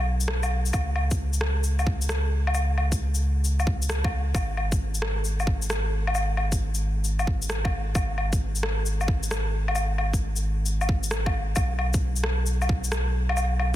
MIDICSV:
0, 0, Header, 1, 3, 480
1, 0, Start_track
1, 0, Tempo, 451128
1, 782, Time_signature, 4, 2, 24, 8
1, 14640, End_track
2, 0, Start_track
2, 0, Title_t, "Sub bass"
2, 0, Program_c, 0, 38
2, 0, Note_on_c, 0, 35, 84
2, 765, Note_off_c, 0, 35, 0
2, 787, Note_on_c, 0, 37, 89
2, 4609, Note_off_c, 0, 37, 0
2, 4621, Note_on_c, 0, 32, 90
2, 8446, Note_off_c, 0, 32, 0
2, 8456, Note_on_c, 0, 32, 90
2, 12283, Note_off_c, 0, 32, 0
2, 12303, Note_on_c, 0, 35, 87
2, 14640, Note_off_c, 0, 35, 0
2, 14640, End_track
3, 0, Start_track
3, 0, Title_t, "Drums"
3, 219, Note_on_c, 9, 82, 55
3, 297, Note_on_c, 9, 37, 99
3, 325, Note_off_c, 9, 82, 0
3, 403, Note_off_c, 9, 37, 0
3, 459, Note_on_c, 9, 77, 53
3, 459, Note_on_c, 9, 82, 45
3, 565, Note_off_c, 9, 77, 0
3, 565, Note_off_c, 9, 82, 0
3, 700, Note_on_c, 9, 82, 54
3, 779, Note_off_c, 9, 82, 0
3, 779, Note_on_c, 9, 77, 54
3, 779, Note_on_c, 9, 82, 59
3, 785, Note_on_c, 9, 36, 120
3, 886, Note_off_c, 9, 77, 0
3, 886, Note_off_c, 9, 82, 0
3, 891, Note_off_c, 9, 36, 0
3, 1017, Note_on_c, 9, 77, 38
3, 1124, Note_off_c, 9, 77, 0
3, 1181, Note_on_c, 9, 82, 60
3, 1184, Note_on_c, 9, 36, 102
3, 1288, Note_off_c, 9, 82, 0
3, 1291, Note_off_c, 9, 36, 0
3, 1419, Note_on_c, 9, 82, 58
3, 1499, Note_on_c, 9, 37, 102
3, 1526, Note_off_c, 9, 82, 0
3, 1606, Note_off_c, 9, 37, 0
3, 1742, Note_on_c, 9, 82, 56
3, 1849, Note_off_c, 9, 82, 0
3, 1906, Note_on_c, 9, 77, 39
3, 1906, Note_on_c, 9, 82, 34
3, 1985, Note_on_c, 9, 36, 106
3, 2012, Note_off_c, 9, 77, 0
3, 2012, Note_off_c, 9, 82, 0
3, 2092, Note_off_c, 9, 36, 0
3, 2146, Note_on_c, 9, 82, 57
3, 2226, Note_off_c, 9, 82, 0
3, 2226, Note_on_c, 9, 37, 105
3, 2226, Note_on_c, 9, 82, 56
3, 2332, Note_off_c, 9, 37, 0
3, 2332, Note_off_c, 9, 82, 0
3, 2631, Note_on_c, 9, 77, 56
3, 2708, Note_off_c, 9, 77, 0
3, 2708, Note_on_c, 9, 77, 55
3, 2708, Note_on_c, 9, 82, 59
3, 2815, Note_off_c, 9, 77, 0
3, 2815, Note_off_c, 9, 82, 0
3, 2953, Note_on_c, 9, 77, 36
3, 3060, Note_off_c, 9, 77, 0
3, 3106, Note_on_c, 9, 36, 64
3, 3108, Note_on_c, 9, 82, 60
3, 3212, Note_off_c, 9, 36, 0
3, 3214, Note_off_c, 9, 82, 0
3, 3349, Note_on_c, 9, 82, 55
3, 3455, Note_off_c, 9, 82, 0
3, 3666, Note_on_c, 9, 82, 57
3, 3773, Note_off_c, 9, 82, 0
3, 3826, Note_on_c, 9, 77, 37
3, 3826, Note_on_c, 9, 82, 34
3, 3904, Note_on_c, 9, 36, 109
3, 3933, Note_off_c, 9, 77, 0
3, 3933, Note_off_c, 9, 82, 0
3, 4010, Note_off_c, 9, 36, 0
3, 4067, Note_on_c, 9, 82, 59
3, 4144, Note_off_c, 9, 82, 0
3, 4144, Note_on_c, 9, 37, 110
3, 4144, Note_on_c, 9, 82, 59
3, 4251, Note_off_c, 9, 37, 0
3, 4251, Note_off_c, 9, 82, 0
3, 4303, Note_on_c, 9, 36, 112
3, 4307, Note_on_c, 9, 77, 53
3, 4409, Note_off_c, 9, 36, 0
3, 4413, Note_off_c, 9, 77, 0
3, 4624, Note_on_c, 9, 36, 127
3, 4629, Note_on_c, 9, 77, 52
3, 4629, Note_on_c, 9, 82, 59
3, 4730, Note_off_c, 9, 36, 0
3, 4735, Note_off_c, 9, 77, 0
3, 4735, Note_off_c, 9, 82, 0
3, 4866, Note_on_c, 9, 77, 34
3, 4973, Note_off_c, 9, 77, 0
3, 5023, Note_on_c, 9, 36, 110
3, 5023, Note_on_c, 9, 82, 59
3, 5129, Note_off_c, 9, 36, 0
3, 5129, Note_off_c, 9, 82, 0
3, 5263, Note_on_c, 9, 82, 55
3, 5341, Note_on_c, 9, 37, 111
3, 5370, Note_off_c, 9, 82, 0
3, 5447, Note_off_c, 9, 37, 0
3, 5582, Note_on_c, 9, 82, 54
3, 5689, Note_off_c, 9, 82, 0
3, 5745, Note_on_c, 9, 77, 38
3, 5745, Note_on_c, 9, 82, 32
3, 5821, Note_on_c, 9, 36, 113
3, 5851, Note_off_c, 9, 77, 0
3, 5851, Note_off_c, 9, 82, 0
3, 5927, Note_off_c, 9, 36, 0
3, 5981, Note_on_c, 9, 82, 57
3, 6064, Note_off_c, 9, 82, 0
3, 6064, Note_on_c, 9, 37, 110
3, 6064, Note_on_c, 9, 82, 56
3, 6171, Note_off_c, 9, 37, 0
3, 6171, Note_off_c, 9, 82, 0
3, 6463, Note_on_c, 9, 77, 53
3, 6542, Note_off_c, 9, 77, 0
3, 6542, Note_on_c, 9, 77, 52
3, 6542, Note_on_c, 9, 82, 55
3, 6649, Note_off_c, 9, 77, 0
3, 6649, Note_off_c, 9, 82, 0
3, 6781, Note_on_c, 9, 77, 35
3, 6887, Note_off_c, 9, 77, 0
3, 6938, Note_on_c, 9, 36, 64
3, 6938, Note_on_c, 9, 82, 58
3, 7044, Note_off_c, 9, 36, 0
3, 7045, Note_off_c, 9, 82, 0
3, 7178, Note_on_c, 9, 82, 55
3, 7285, Note_off_c, 9, 82, 0
3, 7496, Note_on_c, 9, 82, 55
3, 7602, Note_off_c, 9, 82, 0
3, 7654, Note_on_c, 9, 77, 36
3, 7654, Note_on_c, 9, 82, 32
3, 7739, Note_on_c, 9, 36, 112
3, 7760, Note_off_c, 9, 77, 0
3, 7760, Note_off_c, 9, 82, 0
3, 7845, Note_off_c, 9, 36, 0
3, 7896, Note_on_c, 9, 82, 56
3, 7976, Note_off_c, 9, 82, 0
3, 7976, Note_on_c, 9, 37, 110
3, 7976, Note_on_c, 9, 82, 55
3, 8082, Note_off_c, 9, 37, 0
3, 8082, Note_off_c, 9, 82, 0
3, 8136, Note_on_c, 9, 77, 50
3, 8140, Note_on_c, 9, 36, 109
3, 8242, Note_off_c, 9, 77, 0
3, 8246, Note_off_c, 9, 36, 0
3, 8460, Note_on_c, 9, 36, 122
3, 8462, Note_on_c, 9, 77, 52
3, 8462, Note_on_c, 9, 82, 53
3, 8567, Note_off_c, 9, 36, 0
3, 8568, Note_off_c, 9, 77, 0
3, 8568, Note_off_c, 9, 82, 0
3, 8701, Note_on_c, 9, 77, 34
3, 8807, Note_off_c, 9, 77, 0
3, 8859, Note_on_c, 9, 36, 107
3, 8860, Note_on_c, 9, 82, 55
3, 8966, Note_off_c, 9, 36, 0
3, 8967, Note_off_c, 9, 82, 0
3, 9103, Note_on_c, 9, 82, 53
3, 9183, Note_on_c, 9, 37, 108
3, 9209, Note_off_c, 9, 82, 0
3, 9290, Note_off_c, 9, 37, 0
3, 9426, Note_on_c, 9, 82, 52
3, 9532, Note_off_c, 9, 82, 0
3, 9585, Note_on_c, 9, 77, 36
3, 9585, Note_on_c, 9, 82, 31
3, 9662, Note_on_c, 9, 36, 107
3, 9692, Note_off_c, 9, 77, 0
3, 9692, Note_off_c, 9, 82, 0
3, 9768, Note_off_c, 9, 36, 0
3, 9823, Note_on_c, 9, 82, 55
3, 9907, Note_off_c, 9, 82, 0
3, 9907, Note_on_c, 9, 37, 106
3, 9907, Note_on_c, 9, 82, 54
3, 10013, Note_off_c, 9, 37, 0
3, 10013, Note_off_c, 9, 82, 0
3, 10302, Note_on_c, 9, 77, 51
3, 10378, Note_off_c, 9, 77, 0
3, 10378, Note_on_c, 9, 77, 52
3, 10378, Note_on_c, 9, 82, 53
3, 10484, Note_off_c, 9, 77, 0
3, 10484, Note_off_c, 9, 82, 0
3, 10622, Note_on_c, 9, 77, 36
3, 10729, Note_off_c, 9, 77, 0
3, 10784, Note_on_c, 9, 36, 60
3, 10788, Note_on_c, 9, 82, 55
3, 10890, Note_off_c, 9, 36, 0
3, 10894, Note_off_c, 9, 82, 0
3, 11025, Note_on_c, 9, 82, 52
3, 11131, Note_off_c, 9, 82, 0
3, 11341, Note_on_c, 9, 82, 53
3, 11447, Note_off_c, 9, 82, 0
3, 11505, Note_on_c, 9, 77, 37
3, 11505, Note_on_c, 9, 82, 32
3, 11585, Note_on_c, 9, 36, 104
3, 11611, Note_off_c, 9, 77, 0
3, 11611, Note_off_c, 9, 82, 0
3, 11691, Note_off_c, 9, 36, 0
3, 11741, Note_on_c, 9, 82, 54
3, 11821, Note_off_c, 9, 82, 0
3, 11821, Note_on_c, 9, 37, 101
3, 11821, Note_on_c, 9, 82, 53
3, 11928, Note_off_c, 9, 37, 0
3, 11928, Note_off_c, 9, 82, 0
3, 11982, Note_on_c, 9, 77, 53
3, 11984, Note_on_c, 9, 36, 102
3, 12089, Note_off_c, 9, 77, 0
3, 12091, Note_off_c, 9, 36, 0
3, 12297, Note_on_c, 9, 77, 55
3, 12297, Note_on_c, 9, 82, 56
3, 12305, Note_on_c, 9, 36, 115
3, 12404, Note_off_c, 9, 77, 0
3, 12404, Note_off_c, 9, 82, 0
3, 12412, Note_off_c, 9, 36, 0
3, 12541, Note_on_c, 9, 77, 37
3, 12647, Note_off_c, 9, 77, 0
3, 12699, Note_on_c, 9, 82, 56
3, 12706, Note_on_c, 9, 36, 103
3, 12806, Note_off_c, 9, 82, 0
3, 12812, Note_off_c, 9, 36, 0
3, 12941, Note_on_c, 9, 82, 54
3, 13019, Note_on_c, 9, 37, 99
3, 13047, Note_off_c, 9, 82, 0
3, 13125, Note_off_c, 9, 37, 0
3, 13260, Note_on_c, 9, 82, 55
3, 13367, Note_off_c, 9, 82, 0
3, 13424, Note_on_c, 9, 77, 40
3, 13424, Note_on_c, 9, 82, 31
3, 13505, Note_on_c, 9, 36, 102
3, 13531, Note_off_c, 9, 77, 0
3, 13531, Note_off_c, 9, 82, 0
3, 13611, Note_off_c, 9, 36, 0
3, 13663, Note_on_c, 9, 82, 57
3, 13744, Note_off_c, 9, 82, 0
3, 13744, Note_on_c, 9, 37, 103
3, 13744, Note_on_c, 9, 82, 57
3, 13850, Note_off_c, 9, 37, 0
3, 13850, Note_off_c, 9, 82, 0
3, 14144, Note_on_c, 9, 77, 57
3, 14224, Note_off_c, 9, 77, 0
3, 14224, Note_on_c, 9, 77, 57
3, 14224, Note_on_c, 9, 82, 58
3, 14330, Note_off_c, 9, 77, 0
3, 14330, Note_off_c, 9, 82, 0
3, 14465, Note_on_c, 9, 77, 39
3, 14571, Note_off_c, 9, 77, 0
3, 14640, End_track
0, 0, End_of_file